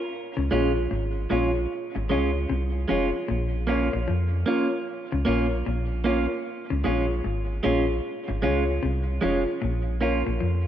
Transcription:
0.37 0.51 C#2 medium
0.37 0.45 C#3 medium
0.51 0.88 A#1 loud
0.51 0.75 A#2 medium
0.51 0.71 G#3 medium
0.51 0.71 C#4 medium
0.51 0.76 F4 medium
0.51 0.72 F4 medium
0.51 0.76 G#4 medium
0.51 0.76 C#5 medium
0.91 1.28 G#1 medium
0.91 1.15 G#2 medium
1.30 1.67 A#1 medium
1.30 1.54 A#2 medium
1.30 1.50 G#3 medium
1.30 1.51 C#4 medium
1.30 1.55 F4 medium
1.30 1.51 F4 medium
1.30 1.55 G#4 medium
1.30 1.55 C#5 loud
1.95 2.13 G#1 medium
1.95 2.04 G#2 medium
1.95 muted clean electric guitar stroke soft
2.09 2.47 C#2 medium
2.09 2.33 C#3 medium
2.09 2.30 G#3 medium
2.09 2.30 C#4 medium
2.09 2.34 F4 medium
2.09 2.30 F4 medium
2.09 2.34 G#4 medium
2.09 2.35 C#5 medium
2.49 2.86 C2 medium
2.49 2.73 C3 medium
2.88 3.13 F1 medium
2.88 3.04 F2 medium
2.88 3.08 G#3 medium
2.88 3.09 C#4 medium
2.88 3.13 F4 medium
2.88 3.09 F4 medium
2.88 3.14 G#4 medium
2.88 3.14 C#5 loud
3.28 3.90 A#1 loud
3.28 3.52 A#2 medium
3.67 3.88 A#3 medium
3.67 3.88 C#4 medium
3.67 3.93 F4 medium
3.67 3.89 F4 medium
3.67 3.93 A#4 medium
3.67 3.93 C#5 loud
3.93 4.07 A#1 medium
3.93 4.02 A#2 medium
4.08 4.45 F2 loud
4.08 4.31 F3 medium
4.46 4.67 A#3 medium
4.46 4.67 C#4 medium
4.46 4.72 F4 medium
4.46 4.68 F4 medium
4.46 4.72 A#4 medium
4.46 4.72 C#5 medium
5.12 5.26 C#2 medium
5.12 5.21 C#3 medium
5.12 muted clean electric guitar stroke soft
5.25 5.63 A#1 medium
5.25 5.50 A#2 medium
5.25 5.46 A#3 medium
5.25 5.46 C#4 medium
5.25 5.51 F4 medium
5.25 5.47 F4 medium
5.25 5.51 A#4 medium
5.25 5.51 C#5 medium
5.66 6.28 A#1 medium
5.66 5.90 A#2 medium
6.04 6.25 A#3 medium
6.04 6.25 C#4 medium
6.04 6.30 F4 medium
6.04 6.26 F4 medium
6.04 6.30 A#4 medium
6.04 6.31 C#5 medium
6.70 6.84 C#2 medium
6.70 6.79 C#3 medium
6.84 7.22 A#1 medium
6.84 7.09 A#2 medium
6.84 7.05 G#3 medium
6.84 7.05 C#4 medium
6.84 7.09 F4 medium
6.84 7.05 F4 medium
6.84 7.09 G#4 medium
6.84 7.10 C#5 loud
7.24 7.61 G#1 medium
7.24 7.48 G#2 medium
7.63 8.01 A#1 medium
7.63 7.88 A#2 medium
7.63 7.84 G#3 medium
7.63 7.84 C#4 medium
7.63 7.88 F4 medium
7.63 7.84 F4 medium
7.63 7.89 G#4 medium
7.63 7.89 C#5 medium
8.28 8.46 G#1 medium
8.28 8.37 G#2 medium
8.28 muted clean electric guitar stroke soft
8.42 8.80 C#2 medium
8.42 8.67 C#3 medium
8.42 8.63 G#3 medium
8.42 8.63 C#4 medium
8.42 8.68 F4 medium
8.42 8.64 F4 medium
8.42 8.68 G#4 medium
8.42 8.68 C#5 medium
8.83 9.20 C2 medium
8.83 9.06 C3 medium
9.21 9.46 F1 medium
9.21 9.37 F2 medium
9.21 9.42 G#3 medium
9.21 9.42 C#4 medium
9.21 9.47 F4 medium
9.21 9.43 F4 medium
9.21 9.47 G#4 medium
9.21 9.47 C#5 medium
9.62 10.24 A#1 loud
9.62 9.86 A#2 medium
10.01 10.21 A#3 medium
10.01 10.22 C#4 medium
10.01 10.26 F4 medium
10.01 10.22 F4 medium
10.01 10.26 A#4 medium
10.01 10.27 C#5 loud
10.27 10.41 A#1 medium
10.27 10.35 A#2 medium
10.40 10.67 F2 medium
10.40 10.64 F3 medium

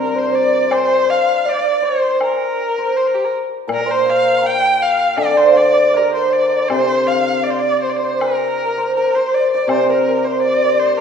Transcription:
0.00 1.08 C3 soft
0.00 0.72 G3 soft
0.00 1.10 C4 soft
0.00 1.47 D4 soft
0.00 0.17 A#4 medium
0.00 0.20 A#4 medium
0.00 2.20 A#4 medium
0.00 0.15 C5 medium
0.00 0.31 D5 medium
0.15 0.70 C5 medium
0.15 0.34 C5 medium
0.15 0.36 C5 medium
0.32 0.64 D5 medium
0.32 0.73 D5 medium
0.32 0.74 D5 medium
0.64 1.45 D5 medium
0.70 1.82 C5 medium
0.70 0.81 C5 medium
0.70 1.12 C5 medium
0.70 high woodblock medium
0.80 0.88 D5 medium
0.87 1.11 C5 medium
1.10 1.47 F5 medium
1.10 1.50 F5 medium
1.46 1.53 D5 medium
1.46 3.92 D5 medium
1.46 1.87 D5 medium
1.51 1.61 C5 medium
1.59 1.78 D5 medium
1.78 1.85 D5 medium
1.82 2.78 C5 medium
1.82 2.19 C5 medium
1.82 2.22 C5 medium
2.20 2.92 A#4 medium
2.20 3.67 A#4 medium
2.20 2.99 A#4 medium
2.20 high woodblock medium
2.78 3.85 C5 medium
2.97 3.08 C5 medium
3.07 3.16 A#4 medium
3.15 3.26 G4 medium
3.25 3.33 A#4 medium
3.68 5.18 A#2 medium
3.68 5.94 A#4 medium
3.68 3.83 A#4 medium
3.68 high woodblock medium
3.73 3.92 A#4 medium
3.82 3.90 D5 medium
3.86 5.37 C5 medium
3.86 4.37 C5 medium
3.91 4.11 C5 medium
4.06 6.28 F5 medium
4.06 4.48 F5 medium
4.38 4.43 A#5 soft
4.38 4.41 C6 soft
4.43 6.50 G5 medium
4.43 4.84 G5 loud
4.79 5.20 F5 medium
4.79 5.18 F5 medium
5.17 7.46 D3 medium
5.17 5.55 D5 medium
5.17 5.39 D5 medium
5.17 5.50 D5 medium
5.17 high woodblock medium
5.37 6.13 C5 medium
5.37 5.58 C5 medium
5.51 5.59 F5 soft
5.55 7.45 D5 medium
5.55 5.98 D5 medium
5.55 5.97 D5 medium
5.94 6.05 G4 medium
5.94 8.22 A#4 medium
5.94 5.99 A#4 medium
5.94 6.14 A#4 medium
5.94 low woodblock soft
6.03 6.13 A#4 medium
6.11 6.31 C5 medium
6.11 6.70 C5 medium
6.11 6.34 C5 medium
6.30 6.69 D5 medium
6.30 6.70 D5 medium
6.68 8.95 C3 medium
6.68 7.09 C5 medium
6.68 7.98 C5 medium
6.68 high woodblock medium
7.07 7.45 F5 medium
7.07 9.30 F5 medium
7.07 7.47 F5 medium
7.44 7.52 D5 medium
7.44 7.60 D5 medium
7.50 7.61 C5 medium
7.60 7.82 D5 medium
7.60 9.54 D5 medium
7.60 7.80 D5 medium
7.80 7.91 C5 medium
7.80 7.96 C5 medium
7.80 7.86 D5 soft
7.90 7.98 D5 medium
7.97 8.22 C5 medium
7.97 8.23 C5 medium
7.97 8.77 C5 medium
8.20 8.95 A#4 medium
8.20 8.69 A#4 medium
8.20 8.97 A#4 medium
8.20 high woodblock medium
8.78 9.16 C5 medium
8.96 9.16 A#4 medium
8.96 9.17 A#4 medium
8.96 9.89 A#4 medium
9.15 9.36 C5 medium
9.15 9.71 C5 medium
9.34 9.52 D5 medium
9.52 9.72 D5 medium
9.52 9.69 D5 medium
9.52 10.43 D5 medium
9.67 11.01 C3 medium
9.67 9.82 C5 medium
9.67 9.91 C5 medium
9.67 9.83 C5 medium
9.67 high woodblock medium
9.82 9.92 C5 medium
9.82 10.26 C5 soft
9.89 11.01 A#4 medium
9.89 10.27 A#4 medium
9.89 10.26 A#4 medium
10.25 10.42 C5 medium
10.25 10.43 C5 medium
10.25 11.01 C5 medium
10.42 10.81 D5 medium
10.42 11.00 D5 medium
10.42 10.50 D5 medium
10.50 10.58 D5 soft
10.59 10.65 D5 soft
10.66 10.72 D5 soft
10.73 10.79 D5 soft
10.79 10.99 C5 medium
10.79 10.85 D5 soft
10.86 10.93 D5 soft
10.93 11.01 A#4 medium
10.93 11.00 D5 soft

